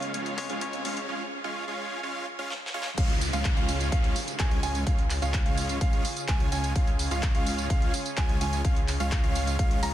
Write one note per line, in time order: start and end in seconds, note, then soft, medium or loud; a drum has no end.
0.00 0.12 C#2 loud
0.00 0.34 C#3 medium
0.00 1.05 C#3 medium
0.00 0.11 G#3 medium
0.00 0.35 G#3 medium
0.00 0.11 C#4 medium
0.00 0.35 C#4 medium
0.00 1.05 C#4 medium
0.00 0.11 F4 medium
0.00 0.35 F4 medium
0.00 1.05 F4 medium
0.00 1.05 G#4 medium
0.00 0.11 C#5 medium
0.00 0.36 C#5 loud
0.00 0.11 F5 medium
0.00 closed hi-hat soft
0.00 riser medium
0.14 0.47 C#2 loud
0.14 0.37 G#3 medium
0.14 0.37 C#4 medium
0.14 0.37 F4 medium
0.14 0.37 C#5 medium
0.14 0.37 F5 loud
0.14 closed hi-hat medium
0.26 closed hi-hat soft
0.37 0.58 C#3 medium
0.37 0.58 G#3 medium
0.37 0.59 C#4 medium
0.37 0.59 F4 medium
0.37 0.59 C#5 medium
0.37 open hi-hat loud
0.50 0.83 C#2 loud
0.50 0.64 G#3 medium
0.50 0.64 C#4 medium
0.50 0.64 F4 medium
0.50 0.64 C#5 medium
0.50 0.64 F5 medium
0.50 closed hi-hat soft
0.61 1.06 C#3 medium
0.61 1.06 G#3 medium
0.61 1.06 C#4 medium
0.61 1.06 F4 medium
0.61 1.06 C#5 medium
0.61 closed hi-hat medium
0.73 closed hi-hat soft
0.85 1.06 C#2 medium
0.85 0.99 G#3 medium
0.85 0.99 C#4 medium
0.85 0.99 F4 medium
0.85 0.99 C#5 medium
0.85 0.99 F5 loud
0.85 open hi-hat loud
0.97 closed hi-hat soft
1.09 1.23 G#3 medium
1.09 1.23 C#4 medium
1.09 1.23 F4 medium
1.09 1.23 C#5 medium
1.09 1.23 F5 medium
1.44 1.65 G#3 medium
1.44 1.65 C#4 medium
1.44 1.65 F4 medium
1.44 1.65 C#5 medium
1.44 1.65 F5 medium
1.68 2.00 G#3 medium
1.68 2.00 C#4 medium
1.68 2.00 F4 medium
1.68 2.00 C#5 medium
1.68 2.00 F5 medium
2.03 2.26 G#3 medium
2.03 2.26 C#4 medium
2.03 2.26 F4 medium
2.03 2.26 C#5 medium
2.03 2.26 F5 loud
2.39 2.53 G#3 medium
2.39 2.53 C#4 medium
2.39 2.53 F4 medium
2.39 2.53 C#5 medium
2.39 2.53 F5 medium
2.50 snare medium
2.66 snare medium
2.74 2.88 G#3 medium
2.74 2.88 C#4 medium
2.74 2.88 F4 medium
2.74 2.88 C#5 medium
2.74 2.88 F5 loud
2.82 snare loud
2.98 3.31 C#2 medium
2.98 9.94 C#3 medium
2.98 3.12 G#3 medium
2.98 9.94 C#4 medium
2.98 3.12 C#4 medium
2.98 9.94 F4 medium
2.98 3.12 F4 medium
2.98 9.94 G#4 loud
2.98 3.12 C#5 medium
2.98 3.12 F5 medium
2.98 kick loud
2.98 closed hi-hat medium
2.98 crash loud
2.98 tambourine soft
2.98 downlifter medium
3.10 closed hi-hat soft
3.21 open hi-hat loud
3.21 tambourine medium
3.33 3.54 C#2 medium
3.33 3.54 G#3 medium
3.33 3.54 C#4 medium
3.33 3.54 F4 medium
3.33 3.54 C#5 medium
3.33 3.54 F5 medium
3.33 closed hi-hat soft
3.33 tambourine soft
3.45 kick loud
3.45 clap loud
3.45 closed hi-hat loud
3.45 tambourine soft
3.57 3.90 C#2 loud
3.57 3.89 G#3 medium
3.57 3.89 C#4 medium
3.57 3.89 F4 medium
3.57 3.89 C#5 medium
3.57 3.89 F5 medium
3.57 closed hi-hat soft
3.69 open hi-hat medium
3.69 tambourine medium
3.80 closed hi-hat soft
3.80 tambourine soft
3.92 4.13 C#2 loud
3.92 4.15 G#3 medium
3.92 4.15 C#4 medium
3.92 4.15 F4 medium
3.92 4.15 C#5 medium
3.92 4.15 F5 loud
3.92 kick loud
3.92 closed hi-hat medium
3.92 tambourine soft
4.04 closed hi-hat soft
4.16 open hi-hat loud
4.16 tambourine medium
4.28 closed hi-hat soft
4.28 tambourine soft
4.39 4.61 C#2 medium
4.39 4.60 G#3 medium
4.39 4.60 C#4 medium
4.39 4.60 F4 medium
4.39 4.60 C#5 medium
4.39 4.60 G#5 loud
4.39 kick loud
4.39 clap loud
4.39 closed hi-hat medium
4.39 tambourine soft
4.51 closed hi-hat soft
4.63 4.84 C#2 medium
4.63 4.84 G#3 medium
4.63 4.84 C#4 medium
4.63 4.84 F4 medium
4.63 4.84 C#5 medium
4.63 4.84 G#5 loud
4.63 open hi-hat medium
4.63 tambourine medium
4.75 closed hi-hat soft
4.75 tambourine soft
4.87 5.20 C#2 medium
4.87 5.01 C#5 medium
4.87 5.01 F5 medium
4.87 kick loud
4.87 closed hi-hat medium
4.87 tambourine soft
4.98 closed hi-hat soft
5.10 clap medium
5.10 open hi-hat loud
5.10 tambourine medium
5.22 5.43 C#2 loud
5.22 5.43 G#3 medium
5.22 5.43 C#4 medium
5.22 5.43 F4 medium
5.22 5.43 C#5 medium
5.22 5.43 F5 medium
5.22 closed hi-hat soft
5.22 tambourine soft
5.34 kick loud
5.34 clap loud
5.34 closed hi-hat medium
5.34 tambourine soft
5.46 5.79 C#2 loud
5.46 5.78 G#3 medium
5.46 5.78 C#4 medium
5.46 5.78 F4 medium
5.46 5.78 C#5 medium
5.46 5.78 F5 medium
5.46 closed hi-hat soft
5.57 open hi-hat medium
5.57 tambourine medium
5.69 closed hi-hat soft
5.69 tambourine soft
5.81 6.02 C#2 loud
5.81 6.04 G#3 medium
5.81 6.04 C#4 medium
5.81 6.04 C#5 medium
5.81 6.04 F5 loud
5.81 kick loud
5.81 closed hi-hat loud
5.81 tambourine soft
5.93 closed hi-hat soft
6.05 open hi-hat loud
6.05 tambourine medium
6.17 closed hi-hat soft
6.17 tambourine soft
6.28 6.50 C#2 medium
6.28 6.49 G#3 medium
6.28 6.49 C#4 medium
6.28 6.49 F4 medium
6.28 6.49 C#5 medium
6.28 6.49 G#5 loud
6.28 kick loud
6.28 clap loud
6.28 closed hi-hat medium
6.40 closed hi-hat soft
6.52 6.73 C#2 medium
6.52 6.73 G#3 medium
6.52 6.73 C#4 medium
6.52 6.73 F4 medium
6.52 6.73 C#5 medium
6.52 6.73 G#5 loud
6.52 open hi-hat loud
6.52 tambourine medium
6.64 closed hi-hat soft
6.64 tambourine soft
6.76 7.09 C#2 medium
6.76 6.90 G#3 medium
6.76 6.90 C#4 medium
6.76 6.90 F4 medium
6.76 6.90 C#5 medium
6.76 6.90 F5 medium
6.76 kick loud
6.76 closed hi-hat medium
6.76 tambourine soft
6.87 closed hi-hat soft
6.99 open hi-hat loud
6.99 tambourine medium
7.11 7.32 C#2 medium
7.11 7.32 G#3 medium
7.11 7.32 C#4 medium
7.11 7.32 F4 medium
7.11 7.32 C#5 medium
7.11 7.32 F5 medium
7.11 closed hi-hat soft
7.11 tambourine soft
7.23 kick loud
7.23 clap loud
7.23 closed hi-hat medium
7.23 tambourine soft
7.35 7.68 C#2 loud
7.35 7.67 G#3 medium
7.35 7.67 C#4 medium
7.35 7.67 F4 medium
7.35 7.67 C#5 medium
7.35 7.67 F5 medium
7.35 closed hi-hat soft
7.47 open hi-hat medium
7.47 tambourine medium
7.58 closed hi-hat soft
7.58 tambourine soft
7.70 7.91 C#2 loud
7.70 7.93 G#3 medium
7.70 7.93 C#4 medium
7.70 7.93 F4 medium
7.70 7.93 C#5 medium
7.70 7.93 F5 loud
7.70 kick loud
7.70 closed hi-hat medium
7.70 tambourine soft
7.82 closed hi-hat soft
7.94 open hi-hat loud
7.94 tambourine medium
8.06 closed hi-hat soft
8.06 tambourine soft
8.17 8.39 C#2 medium
8.17 8.38 G#3 medium
8.17 8.38 C#4 medium
8.17 8.38 F4 medium
8.17 8.38 C#5 medium
8.17 8.38 G#5 loud
8.17 kick loud
8.17 clap loud
8.17 closed hi-hat medium
8.17 tambourine soft
8.29 closed hi-hat soft
8.41 8.62 C#2 medium
8.41 8.62 G#3 loud
8.41 8.62 C#4 medium
8.41 8.62 F4 medium
8.41 8.62 C#5 medium
8.41 8.62 G#5 loud
8.41 open hi-hat loud
8.41 tambourine medium
8.53 closed hi-hat soft
8.53 tambourine soft
8.65 8.98 C#2 medium
8.65 8.79 G#3 medium
8.65 8.79 C#4 medium
8.65 8.79 F4 medium
8.65 8.79 C#5 medium
8.65 8.79 F5 medium
8.65 kick loud
8.65 closed hi-hat medium
8.65 tambourine soft
8.76 closed hi-hat soft
8.88 clap medium
8.88 open hi-hat loud
8.88 tambourine medium
9.00 9.21 C#2 medium
9.00 9.21 G#3 medium
9.00 9.21 C#4 medium
9.00 9.21 F4 medium
9.00 9.21 C#5 medium
9.00 9.21 F5 medium
9.00 closed hi-hat soft
9.00 tambourine soft
9.12 kick loud
9.12 clap loud
9.12 closed hi-hat medium
9.12 tambourine soft
9.24 9.57 C#2 loud
9.24 9.56 G#3 medium
9.24 9.56 C#4 medium
9.24 9.56 F4 medium
9.24 9.56 C#5 medium
9.24 9.56 F5 medium
9.24 closed hi-hat soft
9.35 open hi-hat loud
9.35 tambourine medium
9.47 closed hi-hat soft
9.47 tambourine soft
9.59 9.80 C#2 loud
9.59 9.80 G#3 medium
9.59 9.80 C#4 medium
9.59 9.80 F4 medium
9.59 9.80 F5 loud
9.59 kick loud
9.59 closed hi-hat medium
9.59 tambourine soft
9.71 closed hi-hat soft
9.83 9.92 C#2 loud
9.83 9.92 G#3 medium
9.83 9.92 C#4 medium
9.83 9.92 F4 medium
9.83 9.92 C#5 medium
9.83 9.92 A#5 loud
9.83 open hi-hat loud
9.83 tambourine medium